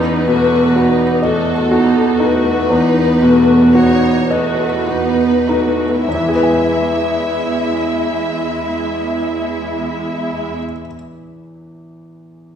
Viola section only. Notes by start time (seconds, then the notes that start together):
Already playing: B3 D#4
0.30 A3 F#4
0.77 B3 D#4
1.25 A3 F#4
1.72 B3 D#4
2.20 A3 F#4
2.70 B3 D#4
3.23 A3 F#4
3.77 B3 D#4
4.31 A3 F#4
4.88 B3 D#4
5.49 A3 F#4
6.06 G#3 E4